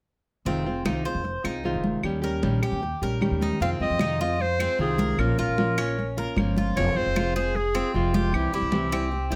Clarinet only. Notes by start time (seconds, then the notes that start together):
3.62 F5
3.82 D#5
4.22 D#5
4.41 C5
4.81 G#4
5.20 A#4
5.40 A#4
6.77 C#5
6.96 C5
7.36 C5
7.56 G#4
7.94 F4
8.35 G4
8.55 G4